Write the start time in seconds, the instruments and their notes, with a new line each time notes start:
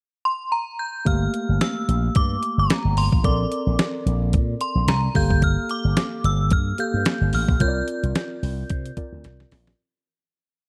0.25 synth bell C6
0.52 synth bell A#5
0.79 synth bell G6
1.05 slap bass G1, tine electric piano A3 A#3 G4 F5, synth bell F6, kick, closed hi-hat
1.34 closed hi-hat
1.49 slap bass G1
1.61 synth bell E6, snare, closed hi-hat
1.88 slap bass A#1, closed hi-hat
2.15 slap bass G2, synth bell D6, kick, closed hi-hat
2.43 closed hi-hat
2.58 slap bass G1, synth bell A#5
2.70 snare, closed hi-hat
2.85 slap bass G1
2.97 slap bass G1, synth bell C6, open hi-hat
3.12 slap bass A1, kick
3.23 slap bass A#1, tine electric piano C4 A4 A#4 D5, synth bell D6, kick, closed hi-hat
3.52 closed hi-hat
3.67 slap bass A#1
3.79 snare, closed hi-hat
4.06 slap bass A#1, closed hi-hat
4.33 slap bass A#2, kick, closed hi-hat
4.61 synth bell C6, closed hi-hat
4.75 slap bass A#1
4.87 slap bass C2, synth bell A#5, snare, closed hi-hat
5.14 slap bass G1, tine electric piano A#3 G4 A4 F5, synth bell G6, kick, open hi-hat
5.30 kick
5.42 synth bell F6, kick, closed hi-hat
5.69 synth bell D6, closed hi-hat
5.85 slap bass G1
5.97 snare, closed hi-hat
6.24 slap bass G1, synth bell E6, closed hi-hat
6.51 slap bass G2, synth bell F6, kick, closed hi-hat
6.78 tine electric piano A#3 G4 A4 F5, synth bell G6, closed hi-hat
6.94 slap bass G2
7.05 snare, closed hi-hat
7.21 slap bass G1
7.33 slap bass A1, synth bell F6, open hi-hat
7.49 slap bass A#1, kick
7.60 slap bass C2, tine electric piano C4 F4 A#4 C#5, synth bell G6, kick, closed hi-hat
7.68 tine electric piano D5
7.88 closed hi-hat
8.03 slap bass C2, closed hi-hat
8.15 snare, closed hi-hat
8.43 slap bass C2, open hi-hat
8.70 slap bass C3, kick, closed hi-hat
8.86 closed hi-hat
8.97 tine electric piano C4 F4 A#4 D5, kick, closed hi-hat
9.12 slap bass D2
9.24 slap bass C2, snare, closed hi-hat
9.40 snare
9.52 slap bass A#1, snare, open hi-hat
9.67 snare